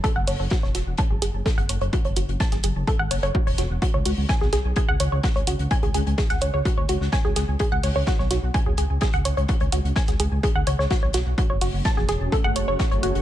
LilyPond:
<<
  \new Staff \with { instrumentName = "Synth pluck" } { \time 4/4 \key fis \minor \tempo 4 = 127 a'16 fis''16 cis''16 cis''16 fis'16 cis''16 fis'16 r16 a''16 gis'16 gis'16 r16 a'16 fis''16 cis''16 cis''16 | fis'16 cis''16 fis'16 r16 a''16 gis'16 gis'16 r16 a'16 fis''16 cis''16 cis''16 fis'16 cis''16 fis'16 r16 | fis'16 cis''16 fis'16 r16 gis''16 gis'16 gis'16 r16 gis'16 fis''16 cis''16 cis''16 fis'16 cis''16 fis'16 r16 | gis''16 gis'16 gis'16 r16 gis'16 fis''16 cis''16 cis''16 fis'16 cis''16 fis'16 r16 gis''16 gis'16 gis'16 r16 |
gis'16 fis''16 cis''16 cis''16 fis'16 cis''16 fis'16 r16 gis''16 gis'16 gis'16 r16 gis'16 fis''16 cis''16 cis''16 | fis'16 cis''16 fis'16 r16 gis''16 gis'16 gis'16 r16 gis'16 fis''16 cis''16 cis''16 fis'16 cis''16 fis'16 r16 | fis'16 cis''16 fis'16 r16 a''16 gis'16 gis'16 r16 a'16 fis''16 cis''16 cis''16 fis'16 cis''16 fis'16 r16 | }
  \new Staff \with { instrumentName = "Analog synth pad" } { \time 4/4 \key fis \minor r1 | r1 | r1 | r1 |
r1 | r1 | <a cis' fis' gis' cis''>1 | }
  \new Staff \with { instrumentName = "Detuned saw bass" } { \clef bass \time 4/4 \key fis \minor r16 fis,,16 fis,,16 fis,,16 r16 e,,16 e,,16 e,,16 r16 fis,,16 fis,,16 fis,,16 r16 fis,,16 fis,,16 fis,,16 | r16 fis,,16 fis,,16 fis,,16 r16 fis,,16 fis,,16 fis,,16 r16 gis,,16 fis,,16 fis,,16 r16 e,,16 e,,16 e,,16 | r16 cis,16 cis,16 cis,16 r16 b,,16 b,,16 b,,16 r16 cis,16 cis,16 cis,16 r16 cis,16 cis,16 cis,16 | r16 cis,16 cis,16 cis,16 r16 cis,16 cis,16 cis,16 r16 d,16 cis,16 cis,16 r16 cis,16 cis,16 cis,16 |
r16 cis,16 cis,16 cis,16 r16 b,,16 b,,16 b,,16 r16 cis,16 cis,16 cis,16 r16 cis,16 cis,16 cis,16 | r16 cis,16 cis,16 cis,16 r16 cis,16 cis,16 cis,16 r16 d,16 cis,16 cis,16 r16 b,,16 b,,16 b,,16 | r16 fis,,16 fis,,16 fis,,16 r16 e,,16 e,,16 e,,16 r16 fis,,16 fis,,16 fis,,16 r16 fis,,16 fis,,16 fis,,16 | }
  \new DrumStaff \with { instrumentName = "Drums" } \drummode { \time 4/4 <hh bd>8 <hh hho>8 <hh bd sn>16 sn16 <hh sn>8 <hh bd>8 hh8 <hh bd sn>16 hh16 hh16 hh16 | <hh bd>16 hh16 hh16 hh16 <hh bd sn>16 <hh sn>16 hh8 <hh bd>8 <hh hho>16 hh16 bd16 hho16 <hh sn>8 | <hh bd>8 <hh hho>8 <hh bd sn>16 sn16 <hh sn>8 <hh bd>8 hh8 <hh bd sn>16 hh16 hh16 hh16 | <hh bd>16 hh16 hh16 hh16 <hh bd sn>16 <hh sn>16 hh8 <hh bd>8 hh16 sn16 <hh bd sn>8 <hh sn>8 |
<hh bd>8 <hh hho>8 <hh bd sn>16 sn16 <hh sn>8 <hh bd>8 hh8 <hh bd sn>16 hh16 hh16 hh16 | <hh bd>16 hh16 hh16 hh16 <hh bd sn>16 <hh sn>16 hh8 <hh bd>8 hh16 sn16 <hh bd sn>8 <hh sn>8 | <hh bd>8 <hh hho>8 <hh bd sn>16 sn16 <hh sn>8 <hh bd>8 hh8 <hh bd sn>16 hh16 hh16 hh16 | }
>>